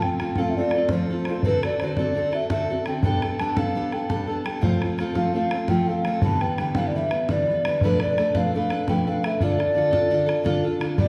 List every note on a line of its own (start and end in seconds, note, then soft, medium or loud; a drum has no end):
0.02 0.19 C4 soft
0.02 0.20 F4 soft
0.02 0.20 A4 soft
0.02 0.39 G5 loud
0.02 bodhran medium
0.19 0.37 A3 soft
0.19 0.37 C4 medium
0.19 0.37 F4 medium
0.19 0.37 A4 medium
0.19 bodhran medium
0.36 0.57 F3 medium
0.36 0.56 A3 soft
0.36 0.57 C4 medium
0.36 0.57 F4 medium
0.36 0.57 A4 medium
0.36 0.50 F5 medium
0.36 bodhran medium
0.49 0.57 E5 medium
0.55 0.74 A3 medium
0.55 0.74 C4 medium
0.55 0.91 D5 medium
0.55 bodhran soft
0.59 0.75 F4 medium
0.59 0.73 A4 medium
0.71 0.91 A4 soft
0.71 bodhran medium
0.76 0.91 C4 soft
0.76 0.91 F4 soft
0.89 1.10 F3 medium
0.89 1.11 A3 medium
0.89 1.11 C4 medium
0.89 1.11 F4 medium
0.89 1.43 C5 medium
0.89 bodhran medium
0.93 1.09 A4 medium
1.10 1.27 C4 soft
1.10 1.28 F4 soft
1.10 1.27 A4 medium
1.25 1.44 A3 medium
1.25 1.43 C4 medium
1.25 bodhran medium
1.29 1.45 F4 soft
1.29 1.44 A4 medium
1.43 1.63 D3 medium
1.43 1.63 C4 medium
1.43 1.63 F#4 medium
1.43 1.62 A4 medium
1.43 1.62 B4 loud
1.43 bodhran medium
1.63 1.81 C4 soft
1.63 1.81 F#4 soft
1.63 1.80 A4 medium
1.63 1.82 D5 medium
1.63 bodhran medium
1.80 1.97 D3 medium
1.80 1.98 C4 medium
1.80 1.98 F#4 medium
1.80 1.97 C5 medium
1.80 bodhran medium
1.84 1.97 A4 medium
1.96 2.15 F#4 medium
1.96 2.16 A4 medium
1.96 2.32 D5 loud
1.96 bodhran medium
2.00 2.13 D3 soft
2.00 2.14 C4 medium
2.15 2.32 D3 medium
2.15 2.33 C4 medium
2.15 2.33 F#4 medium
2.15 2.31 A4 medium
2.15 bodhran soft
2.32 2.49 C4 soft
2.32 2.50 F#4 soft
2.32 2.50 A4 medium
2.32 2.49 E5 medium
2.32 bodhran soft
2.49 2.69 D3 medium
2.49 2.69 C4 medium
2.49 2.70 F#4 medium
2.49 2.69 A4 medium
2.49 2.83 E5 medium
2.49 bodhran medium
2.70 2.86 C4 soft
2.70 2.86 F#4 medium
2.70 2.87 A4 medium
2.85 3.02 D3 soft
2.85 3.03 C4 medium
2.85 3.04 F#4 medium
2.85 3.04 A4 soft
2.85 3.03 G5 medium
2.85 bodhran medium
3.03 3.22 G3 medium
3.03 3.23 B3 medium
3.03 3.23 D4 medium
3.03 3.22 A4 medium
3.03 3.41 G5 loud
3.03 bodhran medium
3.22 3.40 B3 soft
3.22 3.40 D4 soft
3.22 3.40 A4 medium
3.22 bodhran medium
3.39 3.56 G3 medium
3.39 3.56 B3 medium
3.39 3.57 D4 medium
3.39 3.55 A4 medium
3.39 3.59 A5 medium
3.39 bodhran medium
3.56 3.74 G3 medium
3.56 3.75 B3 medium
3.56 3.74 D4 medium
3.56 3.75 A4 medium
3.56 3.94 F5 medium
3.56 bodhran medium
3.75 3.92 G3 medium
3.75 3.93 B3 medium
3.75 3.93 D4 medium
3.75 3.92 A4 medium
3.92 4.09 B3 soft
3.92 4.09 D4 soft
3.92 4.10 A4 medium
3.92 4.11 G5 medium
3.92 bodhran soft
4.09 4.29 G3 medium
4.09 4.28 B3 medium
4.09 4.28 D4 medium
4.09 4.26 A4 medium
4.09 4.47 A5 medium
4.09 bodhran medium
4.27 4.44 B3 soft
4.27 4.43 D4 soft
4.27 4.45 A4 soft
4.44 4.61 G3 medium
4.44 4.63 B3 medium
4.44 4.62 D4 soft
4.44 4.61 A4 medium
4.44 4.64 G5 medium
4.44 bodhran medium
4.61 4.81 F3 medium
4.61 4.81 A3 medium
4.61 4.81 C4 medium
4.61 4.82 F4 medium
4.61 4.80 A4 medium
4.61 4.82 C5 medium
4.61 bodhran medium
4.81 4.98 C4 soft
4.81 4.99 F4 soft
4.81 4.99 A4 soft
4.81 bodhran medium
4.98 5.14 A3 medium
4.98 5.14 C4 medium
4.98 5.14 F4 medium
4.98 5.13 A4 medium
4.98 bodhran medium
5.15 5.35 F3 medium
5.15 5.32 A3 medium
5.15 5.34 C4 medium
5.15 5.34 F4 medium
5.15 5.34 A4 medium
5.15 5.33 F5 loud
5.15 bodhran medium
5.34 5.51 A3 medium
5.34 5.52 C4 medium
5.34 5.52 F4 medium
5.34 5.50 A4 medium
5.34 5.71 F5 medium
5.34 bodhran soft
5.51 5.69 C4 soft
5.51 5.69 F4 soft
5.51 5.68 A4 soft
5.51 bodhran medium
5.68 5.88 F3 medium
5.68 5.88 A3 medium
5.68 5.89 C4 medium
5.68 5.88 F4 medium
5.68 5.88 A4 medium
5.68 5.89 G5 medium
5.68 bodhran medium
5.87 6.05 C4 soft
5.87 6.06 F4 soft
5.87 6.06 A4 medium
5.87 6.22 F5 medium
6.05 6.22 A3 medium
6.05 6.23 C4 soft
6.05 6.23 F4 medium
6.05 6.23 A4 medium
6.05 bodhran medium
6.22 6.41 D3 medium
6.22 6.41 E3 medium
6.22 6.42 G3 medium
6.22 6.42 B3 medium
6.22 6.40 B4 medium
6.22 6.42 A5 loud
6.22 bodhran medium
6.41 6.58 G3 soft
6.41 6.59 B3 medium
6.41 6.58 B4 medium
6.41 6.58 G5 medium
6.41 bodhran soft
6.58 6.75 D3 soft
6.58 6.76 G3 medium
6.58 6.75 B3 medium
6.58 6.75 B4 medium
6.58 6.77 G5 medium
6.58 bodhran medium
6.75 6.94 D3 medium
6.75 6.95 E3 medium
6.75 6.95 G3 medium
6.75 6.95 B3 medium
6.75 6.95 B4 medium
6.75 6.89 F5 loud
6.75 bodhran medium
6.87 6.96 D5 medium
6.94 7.12 D3 medium
6.94 7.12 G3 medium
6.94 7.10 B3 medium
6.94 7.10 B4 medium
6.94 7.31 E5 loud
6.94 bodhran soft
7.11 7.29 G3 soft
7.11 7.28 B3 soft
7.11 7.28 B4 medium
7.11 bodhran medium
7.28 7.48 D3 medium
7.28 7.47 E3 medium
7.28 7.48 G3 medium
7.28 7.48 B3 medium
7.28 7.47 B4 medium
7.28 7.84 D5 medium
7.28 bodhran medium
7.49 7.64 G3 soft
7.49 7.66 B3 soft
7.49 7.65 B4 soft
7.65 7.81 D3 medium
7.65 7.82 G3 medium
7.65 7.83 B3 medium
7.65 7.83 B4 medium
7.65 bodhran medium
7.81 8.01 B2 medium
7.81 8.01 F3 medium
7.81 8.01 A3 medium
7.81 8.01 D4 medium
7.81 8.02 A4 medium
7.81 8.01 B4 loud
7.81 8.01 B4 medium
7.81 bodhran medium
8.00 8.18 A4 medium
8.00 8.18 B4 soft
8.00 8.38 D5 medium
8.00 bodhran medium
8.04 8.16 A3 soft
8.04 8.17 D4 soft
8.17 8.34 A3 medium
8.17 8.34 D4 medium
8.17 8.34 A4 medium
8.17 8.33 B4 medium
8.17 bodhran medium
8.34 8.54 B2 medium
8.34 8.54 F3 medium
8.34 8.53 A3 medium
8.34 8.54 D4 medium
8.34 8.53 A4 medium
8.34 8.53 B4 medium
8.34 8.54 F5 medium
8.34 bodhran medium
8.54 8.71 A3 medium
8.54 8.71 D4 medium
8.54 8.70 A4 medium
8.54 8.70 B4 medium
8.54 8.86 F5 medium
8.54 bodhran soft
8.70 8.87 A3 soft
8.70 8.88 D4 soft
8.70 8.88 A4 soft
8.70 8.87 B4 medium
8.70 bodhran medium
8.88 9.06 B2 medium
8.88 9.06 F3 medium
8.88 9.07 A3 medium
8.88 9.07 D4 medium
8.88 9.06 A4 medium
8.88 9.06 B4 medium
8.88 9.05 G5 medium
8.88 bodhran medium
9.07 9.23 A3 soft
9.07 9.24 D4 soft
9.07 9.24 A4 medium
9.07 9.23 B4 medium
9.07 9.27 F5 medium
9.24 9.40 A3 medium
9.24 9.40 D4 soft
9.24 9.41 A4 medium
9.24 9.42 B4 medium
9.24 9.44 E5 medium
9.24 bodhran medium
9.40 9.59 D3 medium
9.40 9.59 D4 medium
9.40 9.58 F4 medium
9.40 9.57 A4 medium
9.40 10.66 D5 loud
9.40 bodhran medium
9.58 9.74 D4 soft
9.58 9.75 F4 soft
9.58 9.75 A4 soft
9.58 bodhran soft
9.74 9.92 D3 medium
9.74 9.91 D4 medium
9.74 9.91 F4 medium
9.74 9.90 A4 medium
9.91 10.09 D3 medium
9.91 10.10 D4 medium
9.91 10.11 F4 medium
9.91 10.11 A4 medium
9.91 bodhran medium
10.11 10.28 D3 medium
10.11 10.28 D4 medium
10.11 10.27 F4 medium
10.11 10.25 A4 medium
10.11 bodhran soft
10.26 10.43 D4 soft
10.26 10.44 F4 soft
10.26 10.44 A4 medium
10.26 bodhran medium
10.43 10.63 D3 medium
10.43 10.64 D4 medium
10.43 10.64 F4 medium
10.43 10.63 A4 medium
10.43 bodhran medium
10.64 10.79 D4 medium
10.64 10.80 F4 soft
10.64 10.81 A4 medium
10.80 10.97 D3 medium
10.80 10.98 D4 medium
10.80 10.98 F4 medium
10.80 10.99 A4 medium
10.80 bodhran medium
10.98 11.08 G2 medium
10.98 11.08 D3 medium
10.98 11.08 G3 medium
10.98 11.08 B3 medium
10.98 11.08 D4 medium
10.98 11.08 G4 medium
10.98 11.08 D5 loud
10.98 bodhran medium